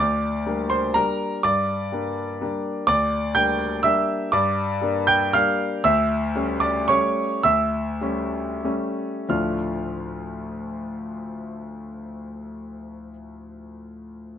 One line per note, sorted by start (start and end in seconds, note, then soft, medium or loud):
0.00 0.45 D2 medium
0.00 0.67 D5 medium
0.00 0.70 D6 loud
0.46 0.91 G3 medium
0.46 0.91 A#3 medium
0.46 0.92 D4 medium
0.70 0.93 C5 medium
0.70 0.95 C6 loud
0.94 1.39 G3 medium
0.94 1.40 A#3 medium
0.94 1.40 D4 medium
0.94 1.40 A#4 medium
0.94 1.43 A#5 loud
1.43 1.91 G2 medium
1.43 2.84 D5 medium
1.43 2.85 D6 loud
1.92 2.37 G3 medium
1.92 2.37 A#3 medium
1.92 2.38 D4 medium
2.41 2.84 G3 medium
2.41 2.84 A#3 medium
2.41 2.84 D4 medium
2.87 3.34 D2 medium
2.87 3.32 D5 loud
2.87 3.35 D6 loud
3.35 3.80 G3 medium
3.35 3.81 A#3 medium
3.35 3.81 D4 medium
3.35 3.81 G5 medium
3.35 3.84 G6 loud
3.83 4.29 G3 medium
3.83 4.29 A#3 medium
3.83 4.29 D4 medium
3.83 4.30 E5 loud
3.83 4.32 E6 loud
4.32 4.81 G2 medium
4.32 5.04 D5 medium
4.32 5.07 D6 loud
4.81 5.29 G3 medium
4.81 5.30 A#3 medium
4.81 5.30 D4 medium
5.07 5.32 G5 loud
5.07 5.33 G6 loud
5.33 5.80 G3 medium
5.33 5.81 A#3 medium
5.33 5.81 D4 medium
5.33 5.81 F5 loud
5.33 5.84 F6 loud
5.84 6.33 D2 medium
5.84 6.57 E5 loud
5.84 6.61 E6 loud
6.35 6.85 G3 medium
6.35 6.85 A3 medium
6.35 6.85 C#4 medium
6.60 6.87 D5 medium
6.60 6.88 D6 loud
6.88 7.41 G3 medium
6.88 7.41 A3 medium
6.88 7.41 C#4 medium
6.88 7.41 C#5 medium
6.88 7.44 C#6 loud
7.43 7.99 D2 medium
7.43 9.26 E5 medium
7.43 9.30 E6 loud
8.01 8.60 G3 medium
8.01 8.60 A3 medium
8.01 8.60 C#4 medium
8.64 9.26 G3 medium
8.64 9.27 A3 medium
8.64 9.27 C#4 medium
9.29 13.10 D2 medium
9.29 13.10 A2 medium
9.29 13.11 F3 medium
9.29 13.11 A3 medium
9.29 13.11 D4 medium
9.29 13.11 F4 medium
9.29 13.11 F6 medium